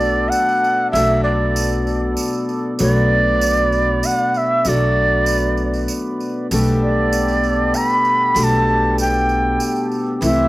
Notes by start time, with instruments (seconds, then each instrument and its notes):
Already playing: upright bass B1, steel-string acoustic guitar B2 F#3 A3 D4 F#4, accordion B3 A4 D5, shakuhachi D5
0.00 tambourine
0.29 shakuhachi F#5, tambourine
0.49 tambourine
0.64 tambourine
0.91 upright bass B1, steel-string acoustic guitar B2 F#3, shakuhachi E5, tambourine
0.96 steel-string acoustic guitar A3 D4 F#4
1.23 shakuhachi D5
1.56 tambourine
1.72 tambourine
1.87 tambourine
2.17 tambourine
2.33 tambourine
2.49 tambourine
2.79 upright bass B1, steel-string acoustic guitar B2 F#3 A3 D4, accordion B4, shakuhachi D5, tambourine
2.83 steel-string acoustic guitar F#4
3.41 tambourine
3.57 tambourine
3.72 tambourine
4.03 shakuhachi F#5, tambourine
4.19 tambourine
4.34 shakuhachi E5, tambourine
4.65 upright bass B1, steel-string acoustic guitar B2 F#3 A3 D4, shakuhachi D5, tambourine
4.69 steel-string acoustic guitar F#4
5.26 tambourine
5.57 tambourine
5.74 tambourine
5.88 tambourine
6.20 tambourine
6.51 upright bass B1, steel-string acoustic guitar B2 G3 A3 D4, accordion B3 G4 A4, tambourine
6.55 steel-string acoustic guitar G4
6.82 shakuhachi D5
7.13 tambourine
7.28 tambourine
7.44 tambourine
7.74 shakuhachi B5, tambourine
7.90 tambourine
8.05 tambourine
8.35 upright bass B1, steel-string acoustic guitar B2 G3 A3 D4 G4, tambourine
8.39 shakuhachi B5
8.44 shakuhachi A5
8.98 shakuhachi G5, tambourine
9.14 tambourine
9.29 tambourine
9.60 tambourine
9.76 tambourine
9.91 tambourine
10.20 upright bass C2, steel-string acoustic guitar C3 E3 A3 E4, accordion C4 B4, shakuhachi E5, tambourine
10.25 steel-string acoustic guitar G4